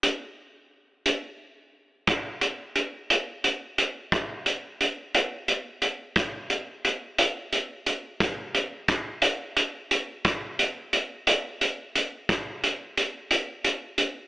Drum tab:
HH |x--x--|xxxxxx|xxxxxx|xxxxxx|
BD |------|o-----|o-----|o-----|

HH |xxxxxx|xxxxxx|xxxxxx|
BD |o-o---|o-----|o-----|